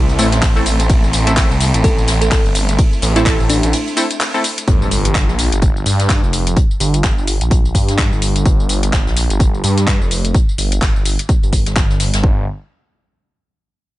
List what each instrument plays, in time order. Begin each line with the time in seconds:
Already playing: detuned saw bass C2, synth stab A3 C4 E4 A4, string section A3 C4 E4
0.09 closed hi-hat, tambourine
0.19 detuned saw bass A1, synth stab A3 C4 E4 A4, closed hi-hat, open hi-hat, tambourine
0.32 snare, closed hi-hat, tambourine
0.42 kick, snare, clap, closed hi-hat, ride, tambourine
0.56 detuned saw bass A1, synth stab A3 C4 E4 A4, closed hi-hat, tambourine
0.66 closed hi-hat, open hi-hat, tambourine
0.80 closed hi-hat, tambourine
0.90 detuned saw bass A1, kick, closed hi-hat, ride, tambourine
1.04 tambourine
1.13 detuned saw bass A1, closed hi-hat, open hi-hat, tambourine
1.27 synth stab A3 C4 E4 A4, closed hi-hat, tambourine
1.36 synth stab A3 C4 E4 A4, kick, snare, clap, closed hi-hat, ride, tambourine
1.50 detuned saw bass C2, snare, tambourine
1.60 snare, closed hi-hat, open hi-hat, tambourine
1.74 detuned saw bass A1, closed hi-hat, tambourine
1.84 synth pluck A4, kick, closed hi-hat, ride, tambourine
1.98 tambourine
2.08 detuned saw bass A1, snare, closed hi-hat, open hi-hat, tambourine
2.21 synth pluck A4, snare, closed hi-hat, tambourine
2.31 synth pluck A4, kick, snare, clap, closed hi-hat, ride, tambourine
2.45 detuned saw bass G1, closed hi-hat, tambourine
2.55 closed hi-hat, open hi-hat, tambourine
2.69 closed hi-hat, tambourine
2.79 kick, closed hi-hat, ride, tambourine
2.93 tambourine
3.02 detuned saw bass A1, closed hi-hat, open hi-hat, tambourine
3.16 synth stab A3 C4 E4 A4, synth pluck E4, closed hi-hat, tambourine
3.26 synth stab A3 C4 E4 A4, kick, snare, clap, closed hi-hat, ride, tambourine
3.40 detuned saw bass A1, tambourine
3.49 synth pluck D4, closed hi-hat, open hi-hat, tambourine
3.63 detuned saw bass A1, closed hi-hat, tambourine
3.73 closed hi-hat, ride, tambourine
3.87 closed hi-hat, tambourine
3.97 synth stab A3 C4 E4 A4, closed hi-hat, open hi-hat, tambourine
4.11 closed hi-hat, tambourine
4.21 clap, closed hi-hat, ride, tambourine
4.34 synth stab A3 C4 E4 A4, tambourine
4.44 closed hi-hat, open hi-hat, tambourine
4.58 closed hi-hat, tambourine
4.68 detuned saw bass G1, kick, closed hi-hat, tambourine, impact
4.82 tambourine
4.91 detuned saw bass G1, closed hi-hat, open hi-hat, tambourine
5.05 closed hi-hat, tambourine
5.15 kick, snare, clap, closed hi-hat, tambourine
5.29 detuned saw bass A#1, snare, tambourine
5.39 snare, closed hi-hat, open hi-hat, tambourine
5.52 detuned saw bass G1, closed hi-hat, tambourine
5.62 kick, closed hi-hat, tambourine
5.77 tambourine
5.85 detuned saw bass G2, closed hi-hat, open hi-hat, tambourine
6.00 snare, closed hi-hat, tambourine
6.09 kick, snare, clap, closed hi-hat, tambourine
6.23 detuned saw bass F1, closed hi-hat, tambourine
6.33 closed hi-hat, open hi-hat, tambourine
6.47 closed hi-hat, tambourine
6.57 kick, closed hi-hat, tambourine
6.71 tambourine
6.80 detuned saw bass G1, closed hi-hat, open hi-hat, tambourine
6.93 closed hi-hat, tambourine
7.03 kick, snare, clap, closed hi-hat, tambourine
7.18 detuned saw bass G1, tambourine
7.27 closed hi-hat, open hi-hat, tambourine
7.41 detuned saw bass A#1, closed hi-hat, tambourine
7.51 kick, closed hi-hat, tambourine
7.65 closed hi-hat, tambourine
7.75 detuned saw bass G2, kick, closed hi-hat, open hi-hat, tambourine
7.88 snare, closed hi-hat, tambourine
7.98 kick, snare, clap, closed hi-hat, tambourine
8.12 detuned saw bass G1, closed hi-hat, tambourine
8.21 closed hi-hat, open hi-hat, tambourine
8.36 closed hi-hat, tambourine
8.46 detuned saw bass G1, kick, closed hi-hat, tambourine
8.60 tambourine
8.69 detuned saw bass G1, closed hi-hat, open hi-hat, tambourine
8.83 closed hi-hat, tambourine
8.93 kick, snare, clap, closed hi-hat, tambourine
9.06 detuned saw bass A#1, snare, tambourine
9.17 snare, closed hi-hat, open hi-hat, tambourine
9.30 detuned saw bass G1, closed hi-hat, tambourine
9.40 kick, closed hi-hat, tambourine
9.54 tambourine
9.64 detuned saw bass G2, closed hi-hat, open hi-hat, tambourine
9.77 snare, closed hi-hat, tambourine
9.87 kick, snare, clap, closed hi-hat, tambourine
10.01 detuned saw bass F1, closed hi-hat, tambourine
10.11 closed hi-hat, open hi-hat, tambourine
10.25 closed hi-hat, tambourine
10.35 kick, closed hi-hat, tambourine
10.49 tambourine
10.58 detuned saw bass G1, closed hi-hat, open hi-hat, tambourine
10.72 closed hi-hat, tambourine
10.81 kick, snare, clap, closed hi-hat, tambourine
10.95 detuned saw bass G1, tambourine
11.05 closed hi-hat, open hi-hat, tambourine
11.19 closed hi-hat, tambourine
11.29 kick, closed hi-hat, tambourine
11.43 detuned saw bass G1, closed hi-hat, tambourine
11.53 kick, closed hi-hat, open hi-hat, tambourine
11.66 detuned saw bass G1, snare, closed hi-hat, tambourine
11.76 kick, snare, clap, closed hi-hat, tambourine
11.90 detuned saw bass G1, snare, tambourine
12.00 snare, closed hi-hat, open hi-hat, tambourine
12.13 detuned saw bass G1, snare, closed hi-hat, tambourine
12.24 detuned saw bass G1, kick